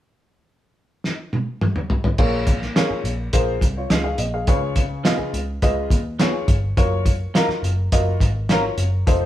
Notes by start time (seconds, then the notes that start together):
1.04 snare
1.33 high tom
1.61 mid tom
1.76 mid tom
1.90 floor tom
2.04 floor tom
2.18 A#1 A#2 F4 G#4 A#4 C#5, kick, crash
2.47 kick, closed hi-hat
2.62 snare
2.76 C#4 F4 G#4 A#4 C#5, snare, closed hi-hat
2.90 muted picked electric bass stroke
3.04 A#1, closed hi-hat
3.33 A#1 F4 G#4 A#4 C5, kick, closed hi-hat
3.61 C2, kick, closed hi-hat
3.77 F4 C#5
3.90 C#2 C#4 F4 G#4 D#5, snare, closed hi-hat
4.04 G#4 F5
4.18 A#1 D#5, closed hi-hat
4.34 G#4 F5
4.47 C#2 C#3 F4 G#4 B4 C#5, kick, closed hi-hat
4.76 kick, closed hi-hat
5.04 B3 F4 G#4 B4 D#5, snare, closed hi-hat
5.19 muted picked electric bass stroke
5.34 C#2, closed hi-hat
5.62 C#2 F4 G#4 B4 D#5, kick, closed hi-hat
5.90 D#2, kick, closed hi-hat
6.19 B3 F4 G#4 B4 C#5, snare, closed hi-hat
6.48 G1, kick, closed hi-hat
6.77 F#1 F4 F#4 A#4 C#5, kick, closed hi-hat
7.06 kick, closed hi-hat
7.34 C#4 F4 F#4 A#4 D#5, snare, closed hi-hat
7.48 muted picked electric bass stroke, snare
7.63 F#1, closed hi-hat
7.92 F#1 F4 F#4 A#4 D#5, kick, closed hi-hat
8.20 G#1, kick, closed hi-hat
8.49 C#4 F4 F#4 A#4 C#5, snare, closed hi-hat
8.78 F#1, closed hi-hat
9.07 F1 D#4 F4 A4 C5, kick, closed hi-hat